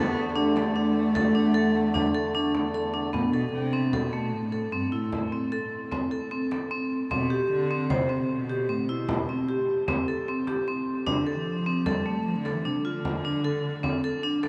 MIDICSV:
0, 0, Header, 1, 5, 480
1, 0, Start_track
1, 0, Key_signature, 0, "minor"
1, 0, Tempo, 396301
1, 1403, Time_signature, 5, 2, 24, 8
1, 17544, End_track
2, 0, Start_track
2, 0, Title_t, "Vibraphone"
2, 0, Program_c, 0, 11
2, 0, Note_on_c, 0, 69, 73
2, 292, Note_off_c, 0, 69, 0
2, 431, Note_on_c, 0, 62, 86
2, 600, Note_off_c, 0, 62, 0
2, 678, Note_on_c, 0, 69, 65
2, 844, Note_off_c, 0, 69, 0
2, 916, Note_on_c, 0, 62, 74
2, 1247, Note_off_c, 0, 62, 0
2, 1396, Note_on_c, 0, 69, 90
2, 1562, Note_off_c, 0, 69, 0
2, 1635, Note_on_c, 0, 62, 72
2, 1802, Note_off_c, 0, 62, 0
2, 1869, Note_on_c, 0, 69, 78
2, 2202, Note_off_c, 0, 69, 0
2, 2355, Note_on_c, 0, 62, 73
2, 2522, Note_off_c, 0, 62, 0
2, 2598, Note_on_c, 0, 69, 72
2, 2764, Note_off_c, 0, 69, 0
2, 2841, Note_on_c, 0, 62, 79
2, 3171, Note_off_c, 0, 62, 0
2, 3324, Note_on_c, 0, 69, 73
2, 3488, Note_off_c, 0, 69, 0
2, 3558, Note_on_c, 0, 62, 74
2, 3724, Note_off_c, 0, 62, 0
2, 3793, Note_on_c, 0, 59, 73
2, 3961, Note_off_c, 0, 59, 0
2, 4040, Note_on_c, 0, 69, 62
2, 4370, Note_off_c, 0, 69, 0
2, 4518, Note_on_c, 0, 60, 65
2, 4684, Note_off_c, 0, 60, 0
2, 4763, Note_on_c, 0, 69, 67
2, 4928, Note_off_c, 0, 69, 0
2, 5002, Note_on_c, 0, 57, 60
2, 5332, Note_off_c, 0, 57, 0
2, 5480, Note_on_c, 0, 69, 63
2, 5646, Note_off_c, 0, 69, 0
2, 5719, Note_on_c, 0, 60, 65
2, 5886, Note_off_c, 0, 60, 0
2, 5961, Note_on_c, 0, 64, 63
2, 6292, Note_off_c, 0, 64, 0
2, 6448, Note_on_c, 0, 60, 66
2, 6611, Note_off_c, 0, 60, 0
2, 6686, Note_on_c, 0, 69, 77
2, 7015, Note_off_c, 0, 69, 0
2, 7166, Note_on_c, 0, 60, 72
2, 7331, Note_off_c, 0, 60, 0
2, 7402, Note_on_c, 0, 69, 68
2, 7568, Note_off_c, 0, 69, 0
2, 7645, Note_on_c, 0, 60, 80
2, 7810, Note_off_c, 0, 60, 0
2, 7890, Note_on_c, 0, 69, 63
2, 8053, Note_off_c, 0, 69, 0
2, 8125, Note_on_c, 0, 60, 71
2, 8455, Note_off_c, 0, 60, 0
2, 8610, Note_on_c, 0, 60, 79
2, 8774, Note_off_c, 0, 60, 0
2, 8846, Note_on_c, 0, 67, 67
2, 9175, Note_off_c, 0, 67, 0
2, 9335, Note_on_c, 0, 60, 70
2, 9497, Note_off_c, 0, 60, 0
2, 9571, Note_on_c, 0, 72, 72
2, 9734, Note_off_c, 0, 72, 0
2, 9802, Note_on_c, 0, 60, 70
2, 10133, Note_off_c, 0, 60, 0
2, 10290, Note_on_c, 0, 67, 60
2, 10453, Note_off_c, 0, 67, 0
2, 10526, Note_on_c, 0, 60, 63
2, 10691, Note_off_c, 0, 60, 0
2, 10769, Note_on_c, 0, 64, 68
2, 11097, Note_off_c, 0, 64, 0
2, 11252, Note_on_c, 0, 60, 69
2, 11415, Note_off_c, 0, 60, 0
2, 11488, Note_on_c, 0, 67, 73
2, 11817, Note_off_c, 0, 67, 0
2, 11966, Note_on_c, 0, 60, 72
2, 12131, Note_off_c, 0, 60, 0
2, 12210, Note_on_c, 0, 69, 63
2, 12374, Note_off_c, 0, 69, 0
2, 12454, Note_on_c, 0, 60, 74
2, 12616, Note_off_c, 0, 60, 0
2, 12692, Note_on_c, 0, 67, 60
2, 12855, Note_off_c, 0, 67, 0
2, 12932, Note_on_c, 0, 60, 65
2, 13259, Note_off_c, 0, 60, 0
2, 13402, Note_on_c, 0, 62, 77
2, 13568, Note_off_c, 0, 62, 0
2, 13644, Note_on_c, 0, 69, 65
2, 13973, Note_off_c, 0, 69, 0
2, 14125, Note_on_c, 0, 60, 68
2, 14289, Note_off_c, 0, 60, 0
2, 14366, Note_on_c, 0, 69, 73
2, 14530, Note_off_c, 0, 69, 0
2, 14605, Note_on_c, 0, 57, 62
2, 14933, Note_off_c, 0, 57, 0
2, 15082, Note_on_c, 0, 69, 59
2, 15247, Note_off_c, 0, 69, 0
2, 15326, Note_on_c, 0, 62, 67
2, 15489, Note_off_c, 0, 62, 0
2, 15562, Note_on_c, 0, 65, 66
2, 15891, Note_off_c, 0, 65, 0
2, 16046, Note_on_c, 0, 62, 67
2, 16209, Note_off_c, 0, 62, 0
2, 16284, Note_on_c, 0, 69, 72
2, 16612, Note_off_c, 0, 69, 0
2, 16754, Note_on_c, 0, 60, 72
2, 16921, Note_off_c, 0, 60, 0
2, 17005, Note_on_c, 0, 69, 68
2, 17168, Note_off_c, 0, 69, 0
2, 17239, Note_on_c, 0, 62, 78
2, 17404, Note_off_c, 0, 62, 0
2, 17481, Note_on_c, 0, 69, 70
2, 17544, Note_off_c, 0, 69, 0
2, 17544, End_track
3, 0, Start_track
3, 0, Title_t, "Harmonium"
3, 0, Program_c, 1, 20
3, 0, Note_on_c, 1, 40, 74
3, 0, Note_on_c, 1, 50, 65
3, 0, Note_on_c, 1, 57, 63
3, 3754, Note_off_c, 1, 40, 0
3, 3757, Note_off_c, 1, 50, 0
3, 3759, Note_off_c, 1, 57, 0
3, 17544, End_track
4, 0, Start_track
4, 0, Title_t, "Cello"
4, 0, Program_c, 2, 42
4, 0, Note_on_c, 2, 59, 98
4, 354, Note_off_c, 2, 59, 0
4, 354, Note_on_c, 2, 59, 55
4, 466, Note_on_c, 2, 57, 104
4, 484, Note_off_c, 2, 59, 0
4, 3333, Note_off_c, 2, 57, 0
4, 3793, Note_on_c, 2, 45, 82
4, 4021, Note_off_c, 2, 45, 0
4, 4034, Note_on_c, 2, 47, 87
4, 4261, Note_off_c, 2, 47, 0
4, 4267, Note_on_c, 2, 48, 95
4, 4759, Note_on_c, 2, 47, 81
4, 4777, Note_off_c, 2, 48, 0
4, 5248, Note_on_c, 2, 45, 77
4, 5266, Note_off_c, 2, 47, 0
4, 5722, Note_off_c, 2, 45, 0
4, 5730, Note_on_c, 2, 43, 71
4, 5951, Note_off_c, 2, 43, 0
4, 5972, Note_on_c, 2, 45, 67
4, 6881, Note_off_c, 2, 45, 0
4, 8619, Note_on_c, 2, 47, 96
4, 9060, Note_off_c, 2, 47, 0
4, 9101, Note_on_c, 2, 50, 98
4, 9572, Note_on_c, 2, 48, 87
4, 9591, Note_off_c, 2, 50, 0
4, 9962, Note_off_c, 2, 48, 0
4, 9962, Note_on_c, 2, 48, 51
4, 10052, Note_on_c, 2, 47, 83
4, 10070, Note_off_c, 2, 48, 0
4, 10522, Note_on_c, 2, 45, 75
4, 10540, Note_off_c, 2, 47, 0
4, 10762, Note_on_c, 2, 47, 71
4, 10780, Note_off_c, 2, 45, 0
4, 11724, Note_off_c, 2, 47, 0
4, 13419, Note_on_c, 2, 48, 76
4, 13580, Note_on_c, 2, 50, 75
4, 13599, Note_off_c, 2, 48, 0
4, 13740, Note_on_c, 2, 52, 78
4, 13758, Note_off_c, 2, 50, 0
4, 13898, Note_on_c, 2, 53, 89
4, 13916, Note_off_c, 2, 52, 0
4, 14372, Note_on_c, 2, 55, 86
4, 14390, Note_off_c, 2, 53, 0
4, 14833, Note_off_c, 2, 55, 0
4, 14840, Note_on_c, 2, 53, 82
4, 14990, Note_off_c, 2, 53, 0
4, 15001, Note_on_c, 2, 50, 75
4, 15169, Note_on_c, 2, 52, 81
4, 15187, Note_off_c, 2, 50, 0
4, 15323, Note_on_c, 2, 48, 75
4, 15341, Note_off_c, 2, 52, 0
4, 15557, Note_off_c, 2, 48, 0
4, 15564, Note_on_c, 2, 50, 85
4, 17432, Note_off_c, 2, 50, 0
4, 17544, End_track
5, 0, Start_track
5, 0, Title_t, "Frame drum"
5, 687, Note_on_c, 9, 64, 47
5, 809, Note_off_c, 9, 64, 0
5, 1405, Note_on_c, 9, 64, 53
5, 1526, Note_off_c, 9, 64, 0
5, 2128, Note_on_c, 9, 64, 15
5, 2249, Note_off_c, 9, 64, 0
5, 2364, Note_on_c, 9, 64, 51
5, 2485, Note_off_c, 9, 64, 0
5, 3084, Note_on_c, 9, 64, 49
5, 3206, Note_off_c, 9, 64, 0
5, 3801, Note_on_c, 9, 64, 53
5, 3922, Note_off_c, 9, 64, 0
5, 4764, Note_on_c, 9, 64, 51
5, 4885, Note_off_c, 9, 64, 0
5, 6207, Note_on_c, 9, 64, 50
5, 6328, Note_off_c, 9, 64, 0
5, 7171, Note_on_c, 9, 64, 51
5, 7292, Note_off_c, 9, 64, 0
5, 7895, Note_on_c, 9, 64, 43
5, 8016, Note_off_c, 9, 64, 0
5, 8616, Note_on_c, 9, 64, 49
5, 8737, Note_off_c, 9, 64, 0
5, 9570, Note_on_c, 9, 64, 55
5, 9691, Note_off_c, 9, 64, 0
5, 11005, Note_on_c, 9, 64, 58
5, 11126, Note_off_c, 9, 64, 0
5, 11966, Note_on_c, 9, 64, 57
5, 12087, Note_off_c, 9, 64, 0
5, 12685, Note_on_c, 9, 64, 44
5, 12806, Note_off_c, 9, 64, 0
5, 13405, Note_on_c, 9, 64, 54
5, 13526, Note_off_c, 9, 64, 0
5, 14365, Note_on_c, 9, 64, 51
5, 14487, Note_off_c, 9, 64, 0
5, 15089, Note_on_c, 9, 64, 44
5, 15210, Note_off_c, 9, 64, 0
5, 15806, Note_on_c, 9, 64, 51
5, 15927, Note_off_c, 9, 64, 0
5, 16760, Note_on_c, 9, 64, 50
5, 16881, Note_off_c, 9, 64, 0
5, 17484, Note_on_c, 9, 64, 45
5, 17544, Note_off_c, 9, 64, 0
5, 17544, End_track
0, 0, End_of_file